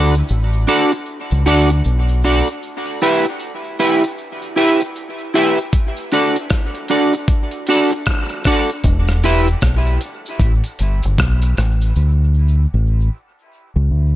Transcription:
0.00 0.21 D2 loud
0.00 0.13 D4 medium
0.00 0.14 F#4 medium
0.00 0.14 A4 loud
0.00 0.14 D5 loud
0.15 cabasa medium
0.29 0.65 A1 medium
0.29 cabasa medium
0.53 cabasa soft
0.67 0.91 D4 medium
0.67 0.91 F#4 medium
0.67 0.91 A4 medium
0.67 0.91 D5 medium
0.67 cabasa medium
0.91 muted clean electric guitar stroke soft
0.91 cabasa medium
1.06 cabasa medium
1.31 1.45 C#2 medium
1.31 cabasa medium
1.46 1.81 D2 medium
1.46 1.69 D4 medium
1.46 1.69 F#4 medium
1.46 1.69 A4 medium
1.46 1.69 D5 loud
1.46 cabasa soft
1.69 cabasa medium
1.84 2.41 B1 loud
1.84 cabasa medium
2.08 cabasa medium
2.24 2.47 D4 medium
2.24 2.47 F#4 medium
2.24 2.47 A4 medium
2.24 2.47 D5 loud
2.24 cabasa soft
2.47 cabasa medium
2.63 cabasa medium
2.86 cabasa medium
3.01 3.24 E4 medium
3.01 3.25 G4 loud
3.01 3.25 B4 loud
3.01 3.25 E5 loud
3.01 cabasa medium
3.25 cabasa medium
3.40 cabasa medium
3.64 cabasa soft
3.79 4.02 E4 medium
3.79 4.02 G4 medium
3.79 4.02 B4 medium
3.79 4.02 E5 medium
3.79 cabasa medium
4.03 muted clean electric guitar stroke soft
4.03 cabasa medium
4.18 cabasa medium
4.42 cabasa medium
4.56 4.79 E4 medium
4.56 4.80 G4 medium
4.56 4.80 B4 medium
4.56 4.80 E5 medium
4.56 cabasa medium
4.80 muted clean electric guitar stroke soft
4.80 cabasa medium
4.96 cabasa medium
5.18 cabasa medium
5.34 5.57 E4 medium
5.34 5.58 G4 medium
5.34 5.58 B4 medium
5.34 5.58 E5 loud
5.34 cabasa medium
5.58 cabasa medium
5.73 kick medium
5.73 closed hi-hat medium
5.73 cabasa medium
5.97 cabasa medium
6.12 6.35 D4 medium
6.12 6.35 F#4 medium
6.12 6.36 A4 medium
6.12 6.36 D5 medium
6.12 closed hi-hat medium
6.12 cabasa medium
6.36 closed hi-hat soft
6.36 cabasa medium
6.50 kick loud
6.50 cross-stick loud
6.50 closed hi-hat medium
6.50 cabasa medium
6.75 closed hi-hat soft
6.75 cabasa soft
6.88 7.13 D4 medium
6.88 7.13 F#4 medium
6.88 7.13 A4 medium
6.88 7.13 D5 medium
6.88 closed hi-hat medium
6.88 cabasa medium
7.13 muted clean electric guitar stroke soft
7.13 cabasa medium
7.28 kick loud
7.28 closed hi-hat medium
7.28 cabasa medium
7.51 closed hi-hat medium
7.51 cabasa medium
7.67 7.91 D4 medium
7.67 7.91 F#4 medium
7.67 7.92 A4 loud
7.67 7.91 D5 medium
7.67 closed hi-hat medium
7.67 cabasa medium
7.90 muted clean electric guitar stroke medium
7.90 closed hi-hat medium
7.90 cabasa medium
8.06 kick loud
8.06 cross-stick loud
8.06 closed hi-hat medium
8.06 cabasa medium
8.29 closed hi-hat medium
8.29 cabasa medium
8.44 8.69 D4 medium
8.44 8.69 F#4 medium
8.44 8.69 A4 loud
8.44 8.69 D5 medium
8.44 kick medium
8.44 cross-stick medium
8.44 open hi-hat medium
8.44 cabasa soft
8.69 cabasa medium
8.84 9.54 E1 loud
8.84 kick loud
8.84 closed hi-hat medium
8.84 cabasa medium
9.08 cross-stick medium
9.08 cabasa medium
9.23 9.46 E4 medium
9.23 9.47 G4 medium
9.23 9.47 B4 medium
9.23 9.47 E5 loud
9.23 closed hi-hat medium
9.23 cabasa medium
9.47 closed hi-hat medium
9.47 cabasa medium
9.61 9.97 B1 medium
9.61 kick loud
9.61 cross-stick loud
9.61 closed hi-hat medium
9.61 cabasa medium
9.86 closed hi-hat soft
9.86 cabasa soft
10.01 closed hi-hat medium
10.01 cabasa medium
10.26 cabasa medium
10.40 10.61 A1 medium
10.40 kick loud
10.40 closed hi-hat medium
10.40 cabasa medium
10.64 closed hi-hat medium
10.64 cabasa medium
10.79 11.01 G1 medium
10.79 closed hi-hat medium
10.79 cabasa soft
11.03 11.17 G1 medium
11.03 closed hi-hat medium
11.03 cabasa medium
11.18 11.53 B1 loud
11.18 kick loud
11.18 cross-stick loud
11.18 closed hi-hat loud
11.18 cabasa medium
11.42 closed hi-hat medium
11.42 cabasa medium
11.57 11.92 A1 medium
11.57 cross-stick medium
11.57 closed hi-hat medium
11.57 cabasa soft
11.82 cabasa medium
11.96 12.65 D2 loud
11.96 cabasa medium
12.74 13.08 A1 loud
13.76 13.89 C#2 medium
13.91 14.16 D2 medium

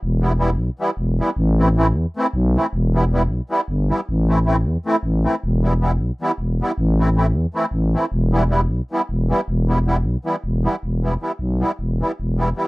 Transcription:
0.03 0.58 E1 loud
0.21 0.32 E3 medium
0.21 0.32 G3 medium
0.21 0.32 B3 medium
0.21 0.33 E4 medium
0.38 0.49 E3 medium
0.38 0.50 G3 medium
0.38 0.50 B3 medium
0.38 0.50 E4 medium
0.57 0.70 B1 medium
0.79 0.90 E3 medium
0.79 0.90 G3 medium
0.79 0.90 B3 medium
0.79 0.91 E4 medium
0.97 1.21 E1 medium
1.19 1.30 E3 medium
1.19 1.30 G3 medium
1.19 1.30 B3 medium
1.19 1.30 E4 medium
1.37 1.95 A1 loud
1.58 1.68 E3 medium
1.58 1.68 A3 medium
1.58 1.69 C4 medium
1.58 1.69 E4 medium
1.76 1.86 E3 medium
1.76 1.87 A3 medium
1.76 1.87 C4 medium
1.76 1.87 E4 medium
1.93 2.06 E2 medium
2.16 2.26 E3 medium
2.16 2.26 A3 medium
2.16 2.27 C4 medium
2.16 2.27 E4 medium
2.33 2.57 B1 loud
2.56 2.66 E3 medium
2.56 2.66 A3 medium
2.56 2.66 C4 medium
2.56 2.67 E4 medium
2.73 3.30 E1 loud
2.93 3.03 E3 medium
2.93 3.04 G3 medium
2.93 3.04 B3 medium
2.93 3.05 E4 medium
3.12 3.22 E3 medium
3.12 3.22 G3 medium
3.12 3.22 B3 medium
3.12 3.23 E4 medium
3.28 3.41 B1 medium
3.50 3.60 E3 medium
3.50 3.60 G3 medium
3.50 3.61 B3 medium
3.50 3.61 E4 medium
3.68 3.92 G1 medium
3.89 4.00 E3 medium
3.89 4.01 G3 medium
3.89 4.01 B3 medium
3.89 4.01 E4 medium
4.09 4.66 A1 loud
4.27 4.38 E3 medium
4.27 4.38 A3 medium
4.27 4.39 C4 medium
4.27 4.39 E4 medium
4.45 4.56 E3 medium
4.45 4.56 A3 medium
4.45 4.56 C4 medium
4.45 4.56 E4 medium
4.65 4.78 E2 medium
4.85 4.96 E3 medium
4.85 4.96 A3 medium
4.85 4.96 C4 medium
4.85 4.97 E4 medium
5.03 5.27 A1 medium
5.24 5.35 E3 medium
5.24 5.35 A3 medium
5.24 5.35 C4 medium
5.24 5.36 E4 medium
5.44 6.00 E1 loud
5.62 5.73 E3 medium
5.62 5.73 G3 medium
5.62 5.73 B3 medium
5.62 5.74 E4 medium
5.81 5.91 E3 medium
5.81 5.91 G3 medium
5.81 5.91 B3 medium
5.81 5.92 E4 medium
5.99 6.12 B1 medium
6.21 6.31 E3 medium
6.21 6.31 G3 medium
6.21 6.31 B3 medium
6.21 6.32 E4 medium
6.38 6.62 E1 medium
6.61 6.71 E3 medium
6.61 6.71 G3 medium
6.61 6.71 B3 medium
6.61 6.72 E4 medium
6.78 7.35 A1 loud
6.99 7.08 E3 medium
6.99 7.09 A3 medium
6.99 7.09 C4 medium
6.99 7.09 E4 medium
7.16 7.26 E3 medium
7.16 7.26 A3 medium
7.16 7.26 C4 medium
7.16 7.27 E4 medium
7.33 7.46 E2 loud
7.54 7.65 E3 medium
7.54 7.65 A3 medium
7.54 7.66 C4 medium
7.54 7.66 E4 medium
7.71 7.96 A1 medium
7.94 8.05 E3 medium
7.94 8.05 A3 medium
7.94 8.05 C4 medium
7.94 8.06 E4 medium
8.12 8.70 E1 loud
8.32 8.43 E3 medium
8.32 8.43 G3 medium
8.32 8.43 B3 medium
8.32 8.44 E4 medium
8.49 8.60 E3 medium
8.49 8.60 G3 medium
8.49 8.61 B3 medium
8.49 8.61 E4 medium
8.69 8.82 B1 medium
8.91 9.01 E3 medium
8.91 9.01 G3 medium
8.91 9.02 B3 medium
8.91 9.02 E4 medium
9.09 9.33 E1 medium
9.29 9.40 E3 medium
9.29 9.40 G3 medium
9.29 9.41 B3 medium
9.29 9.41 E4 medium
9.48 10.05 E1 loud
9.68 9.78 E3 medium
9.68 9.78 G3 medium
9.68 9.79 B3 medium
9.68 9.79 E4 medium
9.86 9.96 E3 medium
9.86 9.97 G3 medium
9.86 9.97 B3 medium
9.86 9.97 E4 medium
10.04 10.17 B1 medium
10.25 10.35 E3 medium
10.25 10.36 G3 medium
10.25 10.36 B3 medium
10.25 10.36 E4 medium
10.44 10.68 E1 medium
10.64 10.75 E3 medium
10.64 10.75 G3 medium
10.64 10.75 B3 medium
10.64 10.76 E4 medium
10.83 11.17 E1 medium
11.03 11.13 E3 medium
11.03 11.14 G3 medium
11.03 11.14 B3 medium
11.03 11.14 E4 medium
11.21 11.31 E3 medium
11.21 11.32 G3 medium
11.21 11.32 B3 medium
11.21 11.32 E4 medium
11.39 11.63 B1 medium
11.60 11.71 E3 medium
11.60 11.71 G3 medium
11.60 11.71 B3 medium
11.60 11.72 E4 medium
11.79 12.03 E1 medium
12.00 12.11 E3 medium
12.00 12.12 G3 medium
12.00 12.12 B3 medium
12.00 12.12 E4 medium
12.20 12.53 E1 medium
12.37 12.49 E3 medium
12.37 12.48 G3 medium
12.37 12.49 B3 medium
12.37 12.49 E4 medium
12.56 12.67 E3 medium
12.56 12.67 G3 medium
12.56 12.67 B3 medium
12.56 12.68 E4 medium

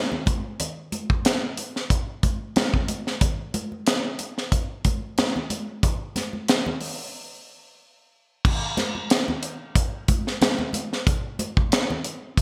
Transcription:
0.12 low conga medium
0.26 kick loud
0.26 closed hi-hat medium
0.26 high conga medium
0.60 closed hi-hat loud
0.60 muted conga soft
0.60 low conga medium
0.92 closed hi-hat medium
0.92 high conga medium
1.10 kick medium
1.10 high conga soft
1.25 snare loud
1.25 closed hi-hat loud
1.25 muted conga soft
1.57 closed hi-hat medium
1.57 muted conga soft
1.76 snare soft
1.90 kick medium
1.90 closed hi-hat medium
2.23 kick medium
2.23 closed hi-hat medium
2.23 high conga medium
2.56 snare loud
2.56 closed hi-hat medium
2.56 muted conga soft
2.56 high conga medium
2.74 kick medium
2.74 low conga medium
2.88 closed hi-hat medium
2.88 muted conga soft
2.88 high conga medium
3.07 snare soft
3.21 kick loud
3.21 closed hi-hat loud
3.21 muted conga soft
3.21 low conga medium
3.54 closed hi-hat medium
3.54 muted conga soft
3.54 high conga medium
3.72 high conga soft
3.87 snare loud
3.87 closed hi-hat loud
3.87 muted conga soft
4.19 closed hi-hat medium
4.19 muted conga soft
4.38 snare soft
4.52 kick medium
4.52 closed hi-hat medium
4.52 muted conga soft
4.85 kick medium
4.85 closed hi-hat medium
4.85 muted conga soft
4.85 high conga medium
5.18 snare loud
5.18 closed hi-hat medium
5.18 muted conga soft
5.18 high conga medium
5.36 low conga medium
5.50 closed hi-hat medium
5.50 high conga medium
5.83 kick loud
5.83 closed hi-hat loud
5.83 low conga medium
6.16 snare soft
6.16 closed hi-hat medium
6.16 muted conga soft
6.16 high conga medium
6.33 high conga soft
6.48 snare medium
6.48 closed hi-hat loud
6.48 muted conga soft
6.66 low conga medium
6.81 open hi-hat medium
6.81 muted conga soft
8.45 kick loud
8.45 crash loud
8.45 muted conga soft
8.45 low conga medium
8.77 snare soft
8.77 closed hi-hat medium
8.77 muted conga soft
8.77 high conga medium
8.95 high conga soft
9.10 snare loud
9.10 closed hi-hat loud
9.28 low conga medium
9.43 closed hi-hat medium
9.75 kick medium
9.75 closed hi-hat medium
9.75 muted conga soft
10.08 kick medium
10.08 closed hi-hat medium
10.08 muted conga soft
10.08 high conga medium
10.27 snare soft
10.41 snare loud
10.41 closed hi-hat medium
10.41 muted conga soft
10.41 high conga medium
10.59 low conga medium
10.73 closed hi-hat medium
10.73 high conga medium
10.93 snare soft
11.07 kick loud
11.07 closed hi-hat loud
11.07 muted conga soft
11.07 low conga medium
11.39 closed hi-hat medium
11.39 muted conga soft
11.39 high conga medium
11.57 kick loud
11.57 high conga soft
11.72 snare loud
11.72 closed hi-hat loud
11.72 muted conga soft
11.90 low conga medium
12.04 closed hi-hat medium
12.04 muted conga soft
12.37 kick medium
12.37 closed hi-hat medium
12.37 muted conga soft

